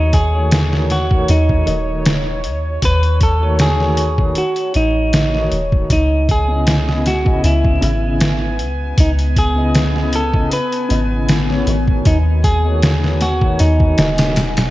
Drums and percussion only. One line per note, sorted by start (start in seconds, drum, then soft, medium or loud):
0.13 kick medium
0.13 closed hi-hat medium
0.51 snare loud
0.51 closed hi-hat medium
0.73 snare soft
0.90 snare soft
0.90 closed hi-hat medium
1.11 kick loud
1.28 closed hi-hat medium
1.49 kick medium
1.67 closed hi-hat medium
2.05 snare loud
2.05 closed hi-hat medium
2.44 closed hi-hat medium
2.82 kick loud
2.82 closed hi-hat medium
3.03 closed hi-hat soft
3.21 kick medium
3.21 closed hi-hat medium
3.59 snare loud
3.59 closed hi-hat medium
3.80 snare soft
3.97 closed hi-hat medium
4.18 kick medium
4.35 closed hi-hat medium
4.56 closed hi-hat soft
4.74 closed hi-hat medium
5.13 snare loud
5.13 closed hi-hat medium
5.35 snare soft
5.52 closed hi-hat medium
5.72 kick loud
5.90 kick loud
5.90 closed hi-hat medium
6.29 kick medium
6.29 closed hi-hat medium
6.67 snare loud
6.67 closed hi-hat medium
6.89 snare soft
7.06 snare soft
7.06 closed hi-hat medium
7.26 kick medium
7.44 closed hi-hat medium
7.64 kick medium
7.82 closed hi-hat medium
8.21 snare loud
8.21 closed hi-hat medium
8.59 closed hi-hat medium
8.98 kick loud
8.98 closed hi-hat medium
9.19 closed hi-hat soft
9.36 kick medium
9.36 closed hi-hat medium
9.75 snare loud
9.75 closed hi-hat medium
9.96 snare soft
10.13 closed hi-hat medium
10.34 kick medium
10.52 closed hi-hat medium
10.72 closed hi-hat soft
10.90 closed hi-hat medium
11.29 snare loud
11.29 closed hi-hat medium
11.50 snare soft
11.67 closed hi-hat medium
11.87 kick loud
12.05 kick loud
12.05 closed hi-hat medium
12.44 kick medium
12.44 closed hi-hat medium
12.82 snare loud
12.82 closed hi-hat medium
13.04 snare soft
13.21 snare soft
13.21 closed hi-hat medium
13.41 kick loud
13.59 closed hi-hat medium
13.80 kick loud
13.98 snare loud
13.98 closed hi-hat medium
14.18 snare loud
14.18 closed hi-hat medium
14.36 snare loud
14.36 closed hi-hat medium
14.57 snare loud
14.57 closed hi-hat medium